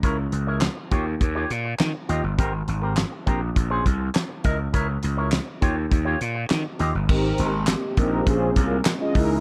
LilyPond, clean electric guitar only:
\new Staff \with { instrumentName = "Clean electric guitar" } { \time 4/4 \key aes \major \tempo 4 = 102 <fes' bes' des''>16 r8 <fes' bes' des''>16 r8 <f' g' des''>16 r8 <f' g' des''>16 r4 <f' g' ees''>16 r16 | <c' g' bes'>16 r8 <c' g' bes'>16 r8 <c' g' bes'>16 r8 <des' aes' c''>16 r4 <fes' bes' ees''>16 r16 | <fes' bes' des''>16 r8 <fes' bes' des''>16 r8 <f' g' des''>16 r8 <f' g' des''>16 r4 <f' g' ees''>16 r16 | r1 | }